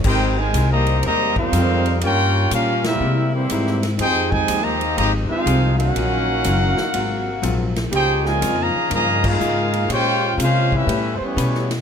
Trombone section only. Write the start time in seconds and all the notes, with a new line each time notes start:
0.05 C4 D#4 G4
0.38 C3 D#3 G#3
0.72 D#3 G3 A#3
1.05 D#3 G3 A#3
1.38 G3 C4 F4
2.02 A#3 C#4 G4
2.53 A#3 C#4 F4
2.86 G3 A#3 E4
3.34 E3 G3 C4
3.99 C4 D#4 G#4
4.31 C3 D#3 G#3
4.63 A#3
4.96 A#3
5.29 G#3 C4 F4
5.76 A#3 C#4 F#4
7.92 G4
8.25 A#2 F3 G#3
8.58 A#2 F3 A#3
8.92 A#2 F3 A#3
9.24 G#3 A#3 F4
9.91 G#3 C#4 G4
10.40 G#3 C#4 F4
10.74 G3 C#4 E4
11.23 E3 G3 C#4